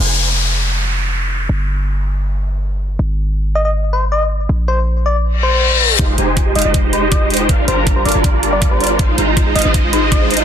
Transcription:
0.00 808-style bass F1, downlifter
1.49 808-style bass G1
2.99 808-style bass G#1
3.55 soft synth lead D#5
3.65 soft synth lead D#5
3.93 soft synth lead C5
4.12 soft synth lead D#5
4.49 808-style bass A#1
4.68 soft synth lead C5
5.06 soft synth lead D5
5.24 reverse cymbal
5.43 soft synth lead C5
5.99 808-style bass F1, supersaw synth G#3 D#4 G4 C5 F5, synth arpeggio sound D#4, kick, closed hi-hat, riser
6.09 synth arpeggio sound F4
6.18 808-style bass F1, supersaw synth G#3 D#4 G4 C5 G#5, synth arpeggio sound G4, closed hi-hat
6.28 synth arpeggio sound D#4
6.37 synth arpeggio sound F4, kick, closed hi-hat
6.46 synth arpeggio sound G4
6.55 808-style bass F1, supersaw synth G#3 D#4 G4 C5 F5, synth arpeggio sound D#4, soft synth lead D#5, closed hi-hat
6.59 closed hi-hat
6.62 808-style bass F1, supersaw synth G#3 D#4 G4 C5 D#5, synth arpeggio sound F4, soft synth lead D#5, closed hi-hat
6.74 synth arpeggio sound D#4, kick, closed hi-hat
6.84 synth arpeggio sound F4
6.93 synth arpeggio sound G4, soft synth lead C5, closed hi-hat
7.03 synth arpeggio sound D#4
7.12 synth arpeggio sound F4, soft synth lead D#5, kick, closed hi-hat
7.21 synth arpeggio sound G4
7.30 synth arpeggio sound D#4, closed hi-hat
7.34 closed hi-hat
7.37 synth arpeggio sound F4, closed hi-hat
7.49 808-style bass G1, supersaw synth G3 D4 F4 A#4 F5, synth arpeggio sound D4, kick, closed hi-hat
7.59 synth arpeggio sound F4
7.68 808-style bass G1, supersaw synth G3 D4 F4 A#4 A#5, synth arpeggio sound G4, soft synth lead C5, closed hi-hat
7.77 synth arpeggio sound D4
7.87 synth arpeggio sound F4, kick, closed hi-hat
7.96 synth arpeggio sound G4, soft synth lead C5
8.05 808-style bass G1, supersaw synth G3 D4 F4 A#4 F5, synth arpeggio sound D4, soft synth lead D5, closed hi-hat
8.09 closed hi-hat
8.12 808-style bass G1, supersaw synth G3 D4 F4 A#4 D5, synth arpeggio sound F4, closed hi-hat
8.24 synth arpeggio sound D4, kick, closed hi-hat
8.34 synth arpeggio sound F4
8.43 synth arpeggio sound G4, closed hi-hat
8.53 synth arpeggio sound D4, soft synth lead D5
8.62 synth arpeggio sound F4, kick, closed hi-hat
8.71 synth arpeggio sound G4, soft synth lead C5
8.80 synth arpeggio sound D4, closed hi-hat
8.84 closed hi-hat
8.87 synth arpeggio sound F4, closed hi-hat
8.99 808-style bass G#1, synth arpeggio sound D#4, supersaw synth D#4 F4 C5 F5, kick, closed hi-hat
9.09 synth arpeggio sound F4
9.18 808-style bass G#1, supersaw synth G#3 D#4 F4 C5 A#5, synth arpeggio sound G#4, closed hi-hat
9.28 synth arpeggio sound D#4
9.37 synth arpeggio sound F4, kick, closed hi-hat
9.46 synth arpeggio sound G#4
9.55 808-style bass G#1, supersaw synth G#3 D#4 F4 C5 F5, synth arpeggio sound D#4, soft synth lead D#5, closed hi-hat
9.59 closed hi-hat
9.62 808-style bass G#1, supersaw synth G#3 D#4 F4 C5 D#5, synth arpeggio sound F4, soft synth lead D#5, closed hi-hat
9.74 synth arpeggio sound D#4, kick, closed hi-hat
9.84 synth arpeggio sound F4
9.93 synth arpeggio sound G#4, soft synth lead C5, closed hi-hat
10.03 synth arpeggio sound D#4
10.12 synth arpeggio sound F4, soft synth lead D#5, kick, closed hi-hat
10.21 synth arpeggio sound G#4
10.31 synth arpeggio sound D#4, closed hi-hat
10.34 closed hi-hat
10.37 synth arpeggio sound F4, closed hi-hat

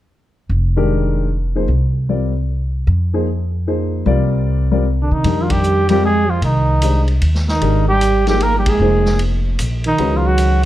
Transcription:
0.49 upright bass F1
0.77 grand piano D#3 G#3 D4 G4 A#4
1.55 grand piano F3 A#3 D#4 G#4 C5
1.68 upright bass C2
2.09 grand piano G3 C4 F4 A#4 D5
2.87 upright bass F2
3.13 grand piano F3 A#3 D#4 G#4 C5
3.67 grand piano F3 A#3 D#4 G#4 C5
4.06 upright bass C2, grand piano G3 C4 F4 A#4 D5
4.71 grand piano G3 C4 F4 A#4 D5
5.01 trombone D3, trumpet D4
5.10 upright bass C3, trombone D#3, trumpet D#4
5.24 upright bass F2, grand piano D#3 G3 D4 G4 A#4, ride
5.40 trombone F3, trumpet F4
5.48 trombone G3, trumpet G4, kick, ride
5.63 hi-hat pedal
5.88 trombone G3, grand piano G3 C4 F4 A#4 D5, trumpet G4, ride
6.01 trombone G#3, trumpet G#4
6.29 trombone F3, trumpet F4
6.42 upright bass C2, trombone D#3, trumpet D#4, ride
6.82 grand piano G#3 D4 G4 C5 D#5, hi-hat pedal, ride
7.08 ride
7.22 upright bass D#2, ride
7.35 snare
7.48 trombone D#3, trumpet D#4, snare
7.61 upright bass G#1, grand piano D#3 G#3 D4 G4 A#4, ride
7.88 trombone G3, trumpet G4
8.01 hi-hat pedal, ride
8.27 grand piano F3 A#3 D#4 G#4 A#4, trombone G3, trumpet G4, snare, ride
8.40 trombone A#3, trumpet A#4, ride
8.57 trombone G3, trumpet G4
8.66 trombone G#3, trumpet G#4, kick, ride
8.79 upright bass F1, grand piano F3 A#3 D#4 G#4 C5
9.06 snare
9.19 ride
9.59 upright bass A#1, hi-hat pedal, ride
9.84 trombone D#3, trumpet D#4, ride
9.98 upright bass C#2, grand piano D#3 G#3 C#4 F#4 B4, ride
10.15 trombone F3, trumpet F4
10.25 trombone F#3, trumpet F#4
10.38 hi-hat pedal, ride

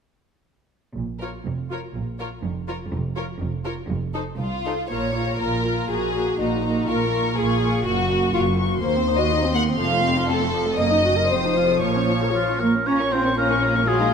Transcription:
0.96 double bass section A#1, cello section A#2
1.21 viola section F4, violin section A#4 C#5
1.46 double bass section F1, cello section F2
1.70 viola section F4, violin section A#4 C#5
1.96 double bass section A#1, cello section A#2
2.20 viola section F4, violin section A#4 C#5
2.44 double bass section F1, cello section F2
2.68 viola section F4, violin section A#4 C#5
2.92 double bass section F1, cello section F2
3.16 viola section F4, violin section A#4 C#5
3.40 double bass section F1, cello section F2
3.65 viola section F4, violin section A#4 C#5
3.90 double bass section F1, cello section F2
4.14 viola section D#4, violin section A4 C5
4.39 double bass section C2, cello section C2, violin section F4
4.65 viola section D#4, violin section A4 C5
4.90 double bass section A#1, cello section A#2, viola section A#3 F4, violin section C#5 A#5
5.15 viola section A#3 F4, violin section A#5
5.40 double bass section A#1, cello section A#2, viola section A#3 F4, violin section A#4 A#5
5.66 viola section A#3 F4, violin section A#5
5.90 double bass section A#1, cello section A#2, viola section A#3 F#4, violin section G#4 A#5
6.14 viola section A#3 F#4, violin section A#5
6.40 double bass section A#1, cello section A#2, viola section A#3 F#4, violin section D#4 A#5
6.65 viola section A#3 F#4, violin section A#5
6.88 double bass section A#1, cello section A#2, viola section A#3 F4, violin section A#4 C#6
7.13 viola section A#3 F4, violin section C#6
7.36 double bass section A#1, cello section A#2, viola section A#3 F4, violin section G#4 C#6
7.61 viola section A#3 F4, violin section C#6
7.85 double bass section F#1, cello section F#2, viola section A#3 F#4, violin section F#4 C#6
8.10 viola section A#3 F#4, violin section C#6
8.34 double bass section F#1, cello section F#2, viola section A#3 F#4, violin section F4 C#6
8.58 viola section A#3 F#4, violin section C#6
8.82 double bass section D#2, cello section D#2, viola section A#3, violin section C5 C6
8.96 viola section C4
9.07 viola section D#4
9.19 viola section F#4, violin section D#5
9.32 viola section D#4
9.44 viola section C4
9.54 viola section A#3, violin section F#5
9.68 viola section C4
9.79 double bass section F1, cello section F2, viola section F3 A3, violin section F5
9.92 viola section A3
10.04 viola section C4
10.16 viola section F4
10.28 viola section C4, violin section A4
10.40 viola section A3
10.54 viola section F3
10.65 viola section A3
10.78 double bass section F#1, cello section F#2, viola section A#3, violin section D#5 D#6
10.92 viola section D#4
11.04 viola section F#4
11.17 viola section A#4
11.29 double bass section F1, cello section F2, viola section F3 C4, violin section C5
11.44 viola section D#4
11.57 viola section F4
11.70 viola section A4
11.82 double bass section A#1, cello section A#2, viola section A#3, violin section C#5 C#6
11.96 viola section C#4
12.09 viola section F4
12.22 viola section A#4
12.34 cello section F3, oboe F4, viola section F4
12.48 viola section C#4
12.60 viola section A#3, cello section A#3, oboe A#4
12.75 viola section C#4
12.86 double bass section A#1, viola section C#4 F4, cello section C#4, oboe C#5, violin section A#5
13.00 viola section A#3 C#4, violin section C#6
13.12 cello section C4, viola section C#4 F4, oboe C5, violin section A#5
13.24 viola section A#3 C#4, violin section C#6
13.37 cello section A#3, viola section C#4 F4, violin section C#4 A#5, oboe A#4
13.50 viola section A#3 C#4, violin section C#6
13.62 viola section C#4 F4, violin section A#5
13.75 viola section A#3 C#4, violin section C#6
13.87 viola section F#3 F#4, cello section G#3, violin section F4 F#5, oboe G#4
14.00 viola section A#3 D#4, violin section A#5

